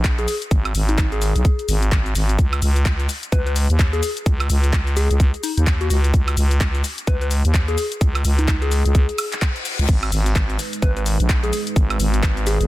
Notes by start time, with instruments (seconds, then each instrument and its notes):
Already playing: fm bass A#1
0.04 kick, clap, closed hi-hat, shaker
0.18 soft synth lead G#4, closed hi-hat, shaker
0.28 open hi-hat, shaker
0.42 closed hi-hat, shaker
0.51 fm bass G#1, kick, closed hi-hat, shaker
0.65 closed hi-hat, high woodblock, shaker
0.75 fm bass G#1, open hi-hat, shaker
0.89 soft synth lead D#4, closed hi-hat, shaker
0.98 fm bass G#1, kick, clap, closed hi-hat, shaker
1.12 soft synth lead G#4, closed hi-hat, shaker
1.22 open hi-hat, shaker
1.36 fm bass B1, closed hi-hat, shaker
1.45 kick, closed hi-hat, shaker
1.59 closed hi-hat, shaker
1.68 fm bass G#1, open hi-hat, shaker
1.83 closed hi-hat, shaker
1.92 fm bass G#1, kick, clap, closed hi-hat, shaker
2.06 closed hi-hat, shaker
2.15 fm bass G#1, open hi-hat, shaker
2.29 closed hi-hat, shaker
2.39 fm bass C#2, kick, closed hi-hat, shaker
2.53 closed hi-hat, high woodblock, shaker
2.62 fm bass C#2, open hi-hat, shaker
2.76 closed hi-hat, shaker
2.85 fm bass C#2, kick, clap, closed hi-hat, shaker
3.00 closed hi-hat, shaker
3.09 open hi-hat, shaker
3.23 closed hi-hat, shaker
3.32 fm bass C#2, soft synth lead B4, kick, closed hi-hat, shaker
3.46 soft synth lead B4, closed hi-hat, shaker
3.56 open hi-hat, shaker
3.70 fm bass D#2, closed hi-hat, shaker
3.79 kick, clap, closed hi-hat, shaker
3.93 soft synth lead G#4, closed hi-hat, shaker
4.03 open hi-hat, shaker
4.17 closed hi-hat, shaker
4.26 fm bass C#2, kick, closed hi-hat, shaker
4.40 closed hi-hat, high woodblock, shaker
4.50 fm bass C#2, open hi-hat, shaker
4.64 closed hi-hat, shaker
4.73 fm bass C#2, kick, clap, closed hi-hat, shaker
4.87 closed hi-hat, shaker
4.96 soft synth lead G#4, open hi-hat, shaker
5.11 fm bass C#2, closed hi-hat, shaker
5.20 kick, closed hi-hat, shaker
5.34 closed hi-hat, shaker
5.43 soft synth lead D#4, open hi-hat, shaker
5.57 fm bass D#2, soft synth lead D#4, closed hi-hat, shaker
5.67 kick, clap, closed hi-hat, shaker
5.81 soft synth lead F#4, closed hi-hat, shaker
5.90 fm bass C#2, soft synth lead F#4, open hi-hat, shaker
6.04 closed hi-hat, shaker
6.14 fm bass C#2, kick, closed hi-hat, shaker
6.28 closed hi-hat, high woodblock, shaker
6.37 fm bass C#2, open hi-hat, shaker
6.51 closed hi-hat, shaker
6.61 fm bass C#2, kick, clap, closed hi-hat, shaker
6.75 closed hi-hat, shaker
6.84 open hi-hat, shaker
6.98 closed hi-hat, shaker
7.07 fm bass C#2, soft synth lead B4, kick, closed hi-hat, shaker
7.21 soft synth lead B4, closed hi-hat, shaker
7.31 open hi-hat, shaker
7.45 fm bass D#2, closed hi-hat, shaker
7.54 kick, clap, closed hi-hat, shaker
7.68 soft synth lead G#4, closed hi-hat, shaker
7.78 open hi-hat, shaker
7.92 closed hi-hat, shaker
8.01 fm bass C#2, kick, closed hi-hat, shaker
8.15 closed hi-hat, high woodblock, shaker
8.25 fm bass C#2, open hi-hat, shaker
8.39 soft synth lead D#4, closed hi-hat, shaker
8.48 fm bass C#2, kick, clap, closed hi-hat, shaker
8.62 soft synth lead G#4, closed hi-hat, shaker
8.71 open hi-hat, shaker
8.85 fm bass C#2, closed hi-hat, shaker
8.95 kick, closed hi-hat, reverse cymbal, shaker
9.09 closed hi-hat, shaker
9.18 open hi-hat, high woodblock, shaker
9.32 clap, closed hi-hat, shaker
9.42 kick, clap, closed hi-hat, shaker
9.56 closed hi-hat, shaker
9.65 open hi-hat, shaker
9.79 fm bass C#2, closed hi-hat, shaker
9.89 fm bass G#1, analog synth pad G#3 D#4 B4, kick, closed hi-hat, crash, shaker
10.03 closed hi-hat, high woodblock, shaker
10.12 fm bass G#1, open hi-hat, shaker
10.26 closed hi-hat, shaker
10.36 fm bass G#1, kick, clap, closed hi-hat, shaker
10.50 closed hi-hat, shaker
10.59 open hi-hat, shaker
10.73 closed hi-hat, shaker
10.82 fm bass G#1, soft synth lead B4, kick, closed hi-hat, shaker
10.97 soft synth lead B4, closed hi-hat, shaker
11.06 open hi-hat, shaker
11.20 fm bass A#1, closed hi-hat, shaker
11.29 kick, clap, closed hi-hat, shaker
11.43 soft synth lead G#4, closed hi-hat, shaker
11.53 open hi-hat, shaker
11.67 closed hi-hat, shaker
11.76 fm bass G#1, kick, closed hi-hat, shaker
11.90 closed hi-hat, high woodblock, shaker
12.00 fm bass G#1, open hi-hat, shaker
12.14 closed hi-hat, shaker
12.23 fm bass G#1, kick, clap, closed hi-hat, shaker
12.37 closed hi-hat, shaker
12.47 soft synth lead G#4, open hi-hat, shaker
12.61 fm bass G#1, closed hi-hat, shaker